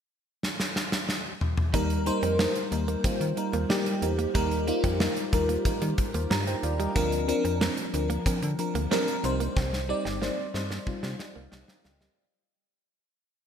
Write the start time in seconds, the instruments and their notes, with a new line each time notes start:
0.43 snare
0.60 snare
0.76 snare
0.92 snare
1.09 snare
1.41 mid tom
1.57 mid tom
1.73 fm bass D#2, fm electric piano G3 A#3 D#4 A#4, clean electric guitar D#4, kick, closed hi-hat
1.90 closed hi-hat
2.06 fm electric piano G3 A#3 D#4 C5, muted clean electric guitar stroke, closed hi-hat
2.23 fm bass F2, clean electric guitar C4, closed hi-hat
2.39 fm electric piano G3 A#3 D#4 A#4, clean electric guitar A#3, snare
2.55 closed hi-hat
2.71 fm bass D#2, fm electric piano G3 A#3 D#4 A#4, muted clean electric guitar stroke, closed hi-hat
2.88 clean electric guitar A#3, closed hi-hat
3.04 fm bass D#3, fm electric piano G3 A#3 D#4 F4, clean electric guitar C4, kick, closed hi-hat
3.21 fm bass D#3, closed hi-hat
3.37 fm electric piano G3 A#3 D#4 A#4, muted clean electric guitar stroke, closed hi-hat
3.53 fm bass D#2, clean electric guitar A#3, closed hi-hat
3.69 fm electric piano G3 A#3 D#4 G4, clean electric guitar G3, snare
3.86 closed hi-hat
4.02 fm bass E2, fm electric piano G3 A#3 D#4 A#4, muted clean electric guitar stroke, closed hi-hat
4.19 clean electric guitar A#3, closed hi-hat
4.34 fm bass D#2, fm electric piano G3 A#3 D#4 A#4, clean electric guitar D#4, kick, closed hi-hat
4.51 closed hi-hat
4.67 fm electric piano G3 A#3 D#4 F4, muted clean electric guitar stroke, closed hi-hat
4.84 fm bass F2, clean electric guitar C4, kick, closed hi-hat
5.00 fm electric piano G3 A#3 D#4 A#4, clean electric guitar A#3, snare
5.17 closed hi-hat
5.33 fm bass D#2, fm electric piano G3 A#3 D#4 A#4, muted clean electric guitar stroke, kick, closed hi-hat
5.49 clean electric guitar A#3, closed hi-hat
5.65 fm bass D#3, fm electric piano G3 A#3 D#4 A#4, kick, closed hi-hat
5.82 fm bass D#3, clean electric guitar G3, closed hi-hat
5.98 muted clean electric guitar stroke, kick, closed hi-hat
6.14 fm bass D#2, clean electric guitar A#3, fm electric piano D#4 C5, closed hi-hat
6.31 fm bass G2, clean electric guitar G3, fm electric piano D4 A#4 A#5, snare
6.47 fm electric piano D#4 C5 G5, muted clean electric guitar stroke, closed hi-hat
6.63 fm bass D#2, fm electric piano F4 D5 F5, closed hi-hat
6.80 clean electric guitar G3, fm electric piano G4 D#5, closed hi-hat
6.95 fm bass D2, fm electric piano F3 C4 D4 A#4, clean electric guitar A#3, kick, closed hi-hat
7.12 closed hi-hat
7.28 fm electric piano F3 C4 D4 A#4, muted clean electric guitar stroke, closed hi-hat
7.45 fm bass F2, clean electric guitar C4, closed hi-hat
7.61 fm electric piano F3 C4 D4 A#4, clean electric guitar A#3, snare
7.77 closed hi-hat
7.93 fm bass D2, fm electric piano F3 C4 D4 A#4, muted clean electric guitar stroke, closed hi-hat
8.10 clean electric guitar A#3, closed hi-hat
8.26 fm bass D3, fm electric piano F3 C4 D4 A#4, clean electric guitar C4, kick, closed hi-hat
8.42 fm bass D3, closed hi-hat
8.58 fm electric piano F3 C4 D4 A#4, muted clean electric guitar stroke, closed hi-hat
8.75 fm bass D2, clean electric guitar A#3, closed hi-hat
8.91 fm electric piano F3 C4 D4 A#4, clean electric guitar G3, snare
9.08 closed hi-hat
9.23 fm bass C2, fm electric piano G3 C4 D#4 C5, muted clean electric guitar stroke, closed hi-hat
9.40 clean electric guitar A#3, closed hi-hat
9.57 fm bass C2, clean electric guitar C4, kick, snare
9.73 snare
9.89 fm electric piano G3 C4 D#4 D5, muted clean electric guitar stroke
10.05 fm bass G1, clean electric guitar C4, snare
10.21 fm electric piano G3 C4 D#4 C5, clean electric guitar A#3, snare
10.54 fm bass G2, fm electric piano G3 C4 D#4 C5, muted clean electric guitar stroke, snare
10.71 clean electric guitar A#3, snare
10.86 fm bass C3, fm electric piano G3 C4 D#4 F4, kick
11.03 fm bass C3, clean electric guitar G3, snare
11.19 fm electric piano G4 D#5, muted clean electric guitar stroke, snare
11.36 fm bass C2, clean electric guitar A#3, fm electric piano F5
11.52 fm bass C2, clean electric guitar G3, fm electric piano G4 D#5, snare
11.68 fm electric piano A#4 G5, muted clean electric guitar stroke, snare
11.84 fm bass C#2, fm electric piano F5, snare
12.01 clean electric guitar G3, fm electric piano G4 D#5, snare